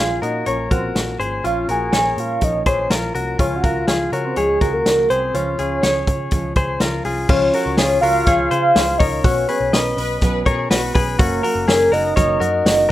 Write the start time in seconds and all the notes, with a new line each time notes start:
Already playing: A#2 G#4 F5
0.00 A#1 F3 A#3 C#4 F4
0.21 A#2 F3 A#3 C#4 F#4 A#4 D#5, closed hi-hat
0.46 A#1 A#2 F3 A#3 C#4 A#4 C#5, closed hi-hat
0.70 A#1 F3 A#3 C#4 F#4 A#4 C5, kick, closed hi-hat
0.94 A#1 A#2 F3 A#3 C#4, snare, closed hi-hat
1.19 G#1 F3 A#3 C#4 G#4 C5, closed hi-hat
1.43 A#1 A#2 F3 A#3 C#4 F4 F5, closed hi-hat
1.68 A#1 F3 A#3 C#4 F#4 A#4 G#5, closed hi-hat
1.92 A#1 A#2 F3 A#3 C#4 A#4 C#5, snare, closed hi-hat
2.17 A#2 F3 A#3 C#4 F5, closed hi-hat
2.41 A#1 A#2 F3 A#3 C#4 D#5, kick, closed hi-hat
2.66 A#1 F3 C#4 G#4 C5 C#5, kick, closed hi-hat
2.90 A#1 A#2 F3 A#3 C#4 F4 A#4, snare, closed hi-hat
3.14 C2 F3 A#3 C#4 F#4 A#4, closed hi-hat
3.39 C#2 C#3 F3 G#3 C#4 F4 C#5, kick, closed hi-hat
3.56 F#5
3.63 C#2 F3 G#3 C#4 F#4 A#4 F5, kick, closed hi-hat
3.87 C#2 C#3 F3 G#3 C#4 F4 G#4, snare, closed hi-hat
4.12 C#3 F3 G#3 C#4 F#4 A#4 C#5, closed hi-hat
4.25 C5
4.36 C#2 C#3 F3 G#3 C#4 G#4 C#5, closed hi-hat
4.60 C#2 F3 G#3 C#4 F#4 A#4, kick, closed hi-hat
4.73 A#4
4.84 C#2 C#3 F3 G#3 C#4, snare, closed hi-hat
5.08 C2 F3 G#3 C#4 G#4 C5, closed hi-hat
5.33 C#2 C#3 F3 G#3 C#4 F4 C#5, closed hi-hat
5.58 C#2 F3 G#3 C#4 F4 G#4, closed hi-hat
5.82 C#2 C#3 F3 G#3 C#4 G#4 C#5, snare, closed hi-hat
6.07 C#3 F3 G#3 C#4, kick, closed hi-hat
6.31 C#2 C#3 F3 G#3 C#4, kick, closed hi-hat
6.55 C#2 F3 G#3 C#4 G#4 C5, kick, closed hi-hat
6.80 C#2 C#3 F3 G#3 C#4 F4 A#4, snare, closed hi-hat
7.04 C2 F3 G#3 C#4 F4 G#4, open hi-hat
7.28 C#2 C#3 F3 G#3 C#4 F4 C#5, kick, crash
7.52 F3 G#3 C#4 F#4 A#4, hi-hat pedal, open hi-hat
7.66 C#2
7.77 C#2 C#3 F3 G#3 C#4 F4 G#4, snare, hi-hat pedal, open hi-hat
8.01 C#2 F3 G#3 C#4 F#4 A#4 F5, hi-hat pedal, open hi-hat
8.26 C#2 C#3 F3 G#3 C#4 G#4 C#5, kick, snare, hi-hat pedal, open hi-hat
8.51 C#3 F3 G#3 C#4 G#4 C5, hi-hat pedal, open hi-hat
8.74 C#2 C#3 F3 G#3 C#4, snare, hi-hat pedal, open hi-hat
8.99 C#2 F3 G#3 C#4 A#4 C#5 D#5, kick, hi-hat pedal, open hi-hat
9.23 B1 B2 F#3 B3 C#4 F#4 C#5, kick, hi-hat pedal, open hi-hat
9.47 F#3 B3 C#4 G#4 B4, hi-hat pedal, open hi-hat
9.61 B1
9.71 B1 B2 F#3 B3 C#4 A#4 B4 D#5, snare, hi-hat pedal, open hi-hat
9.96 B1 F#3 B3 C#4 B4, hi-hat pedal, open hi-hat
10.21 B1 B2 F#3 B3 C#4 B4, kick, snare, hi-hat pedal, open hi-hat
10.45 B2 F#3 B3 C#4 G#4 A#4 C#5, kick, hi-hat pedal, open hi-hat
10.69 B1 B2 F#3 B3 C#4 F#4 B4, snare, hi-hat pedal, open hi-hat
10.94 B1 F#3 B3 C#4 G#4 B4, kick, hi-hat pedal, open hi-hat
11.18 F#1 F#2 C#3 F#3 A#3 C#4 F#4 A#4, kick, hi-hat pedal, open hi-hat
11.43 F#3 A#3 F#4 A#4, hi-hat pedal, open hi-hat
11.55 F#1
11.67 F#1 C#3 F#3 A#3 C#4 G#4, snare, hi-hat pedal, open hi-hat
11.92 F#1 F#3 A#3 F#4 A#4 D#5, hi-hat pedal, open hi-hat
12.16 F#1 F#2 C#3 F#3 A#3 C#4 A#4 C#5, kick, snare, hi-hat pedal, open hi-hat
12.40 F#2 F#3 A#3 C#4 F#4 A#4, hi-hat pedal, open hi-hat
12.64 F#1 C#3 F#3 A#3 C#4, snare, hi-hat pedal, open hi-hat